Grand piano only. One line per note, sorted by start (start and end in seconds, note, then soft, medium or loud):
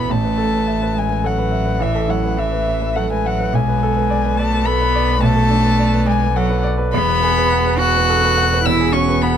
0.00 0.11 E2 soft
0.00 0.12 B2 soft
0.00 0.12 E4 soft
0.00 0.12 A4 soft
0.00 0.12 B4 soft
0.00 0.12 C#5 medium
0.10 1.78 A1 medium
0.24 0.47 B4 soft
0.38 0.61 A4 soft
0.53 0.76 B4 soft
0.67 0.90 E5 soft
0.82 1.05 B4 soft
0.96 1.19 E5 soft
1.09 1.33 B4 soft
1.24 1.38 A4 soft
1.38 1.61 B4 soft
1.52 1.75 E5 soft
1.66 1.89 B4 soft
1.80 3.49 A1 medium
1.95 2.18 A4 soft
2.08 2.32 E4 soft
2.24 2.47 B4 soft
2.38 2.62 E5 soft
2.52 2.76 B4 soft
2.67 2.91 E5 soft
2.81 3.05 B4 soft
2.96 3.11 A4 soft
3.11 3.34 B4 soft
3.25 3.48 E5 medium
3.39 3.54 B4 soft
3.53 5.18 B1 medium
3.68 3.91 B4 medium
3.83 4.05 A4 medium
3.96 4.19 B4 medium
4.10 4.33 D5 medium
4.24 4.47 B4 medium
4.39 4.61 D5 medium
4.53 4.75 B4 soft
4.67 4.81 A4 medium
4.81 5.03 B4 medium
4.95 5.17 D5 medium
5.09 5.32 B4 medium
5.22 6.89 B1 medium
5.36 5.59 A4 medium
5.50 5.73 D4 medium
5.64 5.87 B4 medium
5.79 6.02 D5 medium
5.93 6.16 B4 medium
6.06 6.30 D5 medium
6.22 6.45 B4 medium
6.36 6.50 A4 medium
6.50 6.73 B4 medium
6.64 6.87 D5 medium
6.78 6.92 B4 medium
6.94 8.62 E2 medium
7.08 7.31 B4 medium
7.23 7.46 G#4 medium
7.38 7.60 B4 medium
7.52 7.75 F#5 medium
7.66 7.89 B4 medium
7.81 8.04 F#5 medium
7.96 8.18 B4 medium
8.09 8.23 A4 medium
8.24 8.46 B4 medium
8.37 8.60 F#5 medium
8.53 8.75 B4 medium
8.66 9.37 E2 medium
8.80 9.02 G#4 medium
8.94 9.16 F#4 medium
9.08 9.31 B4 medium
9.23 9.37 F#5 medium